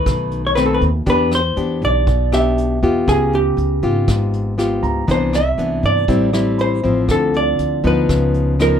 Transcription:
0.00 0.52 D#3 medium
0.00 0.52 A3 medium
0.00 0.41 B4 medium
0.06 0.78 B1 medium
0.06 1.04 B2 medium
0.06 kick medium
0.06 cross-stick medium
0.06 closed hi-hat soft
0.31 closed hi-hat soft
0.47 0.55 C#5 medium
0.55 0.89 D#3 soft
0.55 0.89 A3 medium
0.55 0.89 C4 medium
0.55 0.64 B4 medium
0.55 cross-stick medium
0.55 closed hi-hat soft
0.66 0.74 A4 medium
0.74 0.83 B4 medium
0.81 1.05 D#2 medium
0.81 kick soft
0.81 closed hi-hat soft
1.06 1.53 E2 medium
1.06 2.04 E3 medium
1.06 1.39 B3 medium
1.06 1.39 D4 medium
1.06 1.39 G4 medium
1.06 1.34 B4 loud
1.06 kick medium
1.06 closed hi-hat soft
1.31 1.84 C5 medium
1.31 cross-stick medium
1.31 closed hi-hat soft
1.57 1.80 E2 medium
1.57 2.07 B3 medium
1.57 2.07 D4 medium
1.57 2.07 G4 medium
1.57 closed hi-hat soft
1.82 2.78 B1 medium
1.82 2.34 D5 loud
1.82 kick soft
1.82 closed hi-hat soft
2.07 3.05 B2 medium
2.07 kick medium
2.07 closed hi-hat soft
2.32 2.79 B3 medium
2.32 2.79 D4 medium
2.32 2.79 G4 medium
2.32 3.11 E5 medium
2.32 cross-stick medium
2.32 closed hi-hat soft
2.58 closed hi-hat soft
2.82 3.06 E2 medium
2.82 3.79 B3 medium
2.82 3.79 F4 medium
2.82 3.79 G4 medium
2.82 kick soft
2.82 closed hi-hat soft
3.07 3.54 C#2 medium
3.07 4.06 C#3 soft
3.07 3.34 G#4 medium
3.07 kick medium
3.07 cross-stick medium
3.07 closed hi-hat soft
3.33 4.30 G4 medium
3.33 closed hi-hat soft
3.57 3.81 C#2 medium
3.57 closed hi-hat soft
3.83 4.79 G#1 medium
3.83 4.54 B3 medium
3.83 4.54 F4 medium
3.83 4.55 G4 medium
3.83 kick soft
3.83 closed hi-hat soft
4.08 5.06 G#2 medium
4.08 kick medium
4.08 cross-stick medium
4.08 closed hi-hat soft
4.33 closed hi-hat soft
4.58 5.04 B3 medium
4.58 5.04 F4 medium
4.58 5.05 G4 medium
4.58 cross-stick medium
4.58 closed hi-hat soft
4.83 5.06 C#2 medium
4.83 5.30 A#5 soft
4.83 kick soft
4.83 closed hi-hat soft
5.07 5.55 C2 medium
5.07 6.06 C3 soft
5.07 5.40 E3 soft
5.07 5.40 B3 medium
5.07 5.41 D4 medium
5.07 5.36 C5 loud
5.07 kick soft
5.07 closed hi-hat soft
5.33 5.85 E5 loud
5.33 cross-stick medium
5.33 closed hi-hat soft
5.58 5.81 C2 medium
5.58 6.06 E3 medium
5.58 6.07 B3 medium
5.58 6.07 D4 medium
5.58 closed hi-hat soft
5.83 6.07 G2 medium
5.83 6.56 D5 medium
5.83 kick soft
5.83 closed hi-hat soft
6.08 6.80 A1 medium
6.08 7.06 A2 soft
6.08 6.30 G3 medium
6.08 6.30 C4 medium
6.08 6.30 E4 medium
6.08 kick medium
6.08 closed hi-hat soft
6.33 6.80 G3 soft
6.33 6.80 C4 medium
6.33 6.80 E4 medium
6.33 cross-stick medium
6.33 closed hi-hat soft
6.58 7.11 C5 medium
6.58 7.30 B5 soft
6.58 closed hi-hat soft
6.83 7.07 A1 medium
6.83 7.80 F3 medium
6.83 7.80 C4 medium
6.83 7.80 E4 medium
6.83 kick soft
6.83 closed hi-hat soft
7.08 7.55 D2 medium
7.08 8.07 D3 medium
7.08 7.36 A4 loud
7.08 kick soft
7.08 cross-stick medium
7.08 closed hi-hat soft
7.34 7.87 D5 loud
7.34 closed hi-hat soft
7.59 7.82 D2 medium
7.59 closed hi-hat soft
7.84 8.07 D2 medium
7.84 8.55 F3 medium
7.84 8.56 B3 medium
7.84 8.56 D#4 medium
7.84 8.62 B4 medium
7.84 kick soft
7.84 closed hi-hat soft
8.09 8.80 C#2 medium
8.09 8.80 C#3 medium
8.09 kick medium
8.09 cross-stick medium
8.09 closed hi-hat soft
8.34 closed hi-hat soft
8.59 8.80 F3 medium
8.59 8.80 B3 medium
8.59 8.80 D#4 medium
8.59 8.80 A#4 medium
8.59 cross-stick medium
8.59 closed hi-hat soft

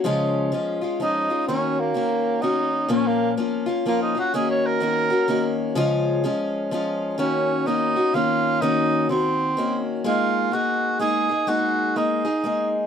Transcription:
0.04 0.52 C#3 medium
0.04 0.51 F3 medium
0.04 0.51 G#3 loud
0.04 0.53 C#4 medium
0.04 0.53 F4 medium
0.52 0.81 F3 medium
0.52 0.82 G#3 medium
0.52 0.82 C#4 medium
0.52 0.80 F4 medium
0.81 0.99 G#3 soft
0.81 1.00 C#4 soft
0.81 1.00 F4 medium
0.99 1.29 F3 medium
0.99 1.29 G#3 medium
0.99 1.30 C#4 medium
0.99 1.46 D#4 medium
0.99 1.29 F4 medium
1.30 1.48 G#3 soft
1.30 1.48 C#4 soft
1.30 1.48 F4 soft
1.47 1.93 D#3 medium
1.47 1.95 A#3 medium
1.47 1.81 C#4 medium
1.47 1.96 C#4 medium
1.47 1.95 F#4 medium
1.80 2.43 A#3 medium
1.94 2.41 D#3 medium
1.94 2.42 A#3 medium
1.94 2.43 C#4 medium
1.94 2.43 F#4 medium
2.42 2.89 D#3 medium
2.42 2.89 A#3 medium
2.42 2.90 C#4 medium
2.42 2.88 D#4 medium
2.42 2.90 F#4 medium
2.88 3.37 A#2 medium
2.88 3.36 F3 medium
2.88 3.37 A#3 medium
2.88 3.38 C#4 medium
2.88 3.08 C#4 medium
2.88 3.38 F4 medium
3.07 3.31 A#3 medium
3.37 3.67 F3 medium
3.37 3.67 A#3 medium
3.37 3.66 C#4 medium
3.37 3.65 F4 medium
3.66 3.85 A#3 soft
3.66 3.86 C#4 soft
3.66 3.85 F4 medium
3.86 4.15 F3 medium
3.86 4.15 A#3 medium
3.86 4.01 A#3 medium
3.86 4.16 C#4 medium
3.86 4.14 F4 medium
4.02 4.17 D#4 medium
4.15 4.33 A#3 soft
4.15 4.34 C#4 soft
4.15 4.33 F4 soft
4.19 4.34 F#4 medium
4.34 4.79 D#3 medium
4.34 4.80 A#3 medium
4.34 4.81 C#4 medium
4.34 4.82 F#4 medium
4.34 4.49 G#4 medium
4.50 4.67 C#5 medium
4.66 5.58 A#4 medium
4.80 5.10 D#3 medium
4.80 5.11 A#3 medium
4.80 5.11 C#4 medium
4.80 5.09 F#4 medium
5.10 5.27 A#3 soft
5.10 5.28 C#4 soft
5.10 5.28 F#4 medium
5.28 5.75 D#3 medium
5.28 5.76 A#3 medium
5.28 5.77 C#4 medium
5.28 5.77 F#4 medium
5.75 6.23 C#3 medium
5.75 6.22 F3 medium
5.75 6.23 G#3 medium
5.75 6.24 C#4 medium
5.75 6.24 F4 loud
6.24 6.70 F3 medium
6.24 6.71 G#3 medium
6.24 6.72 C#4 medium
6.24 6.72 F4 medium
6.71 7.17 F3 medium
6.71 7.18 G#3 medium
6.71 7.18 C#4 medium
6.71 7.19 F4 medium
7.18 7.66 D#3 medium
7.18 7.67 A#3 medium
7.18 7.68 C#4 medium
7.18 7.67 C#4 medium
7.18 7.67 F#4 medium
7.66 7.96 D#3 soft
7.66 7.96 A#3 medium
7.66 7.96 C#4 medium
7.66 8.16 D#4 medium
7.66 7.95 F#4 medium
7.96 8.14 A#3 soft
7.96 8.15 C#4 soft
7.96 8.14 F#4 soft
8.14 8.61 D#3 medium
8.14 8.62 A#3 medium
8.14 8.62 C#4 medium
8.14 8.63 F4 loud
8.61 9.08 D#3 medium
8.61 9.10 A#3 medium
8.61 9.10 C#4 medium
8.61 9.09 D#4 medium
8.61 9.10 F#4 medium
9.09 9.56 D#3 medium
9.09 9.58 A#3 medium
9.09 9.83 C4 medium
9.09 9.58 F#4 medium
9.57 10.04 D#3 medium
9.57 10.04 A#3 medium
9.57 10.05 C#4 medium
9.57 10.06 F#4 medium
10.04 10.51 G#3 medium
10.04 10.53 A#3 medium
10.04 10.53 D#4 medium
10.04 10.54 F4 medium
10.04 10.53 G#4 medium
10.52 10.98 G#3 soft
10.52 11.00 A#3 medium
10.52 11.01 D#4 medium
10.52 11.00 F#4 medium
10.52 11.01 G#4 medium
10.99 11.29 G#3 medium
10.99 11.30 A#3 medium
10.99 11.30 D#4 medium
10.99 11.50 G#4 loud
10.99 11.28 G#4 medium
11.29 11.47 A#3 soft
11.29 11.47 D#4 soft
11.29 11.48 G#4 soft
11.47 11.95 G#3 medium
11.47 11.96 A#3 medium
11.47 11.97 D#4 medium
11.47 11.98 F#4 loud
11.47 11.96 G#4 medium
11.96 12.25 G#3 soft
11.96 12.25 A#3 medium
11.96 12.73 D#4 medium
11.96 12.25 D#4 medium
11.96 12.23 G#4 medium
12.25 12.44 A#3 soft
12.25 12.44 D#4 soft
12.25 12.43 G#4 medium
12.44 12.87 G#3 medium
12.44 12.87 A#3 medium
12.44 12.87 D#4 medium
12.44 12.87 G#4 medium

